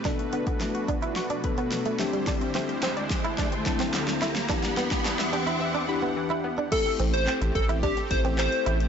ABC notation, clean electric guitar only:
X:1
M:4/4
L:1/16
Q:1/4=108
K:Ador
V:1 name="Clean electric guitar"
D z B, z3 D E z D z B, z A, z G, | D z C z C z2 E D z2 C z2 E z | D z B, z3 D E z D z B, z E z D | A, z C z C z2 E D z2 C z2 E z |]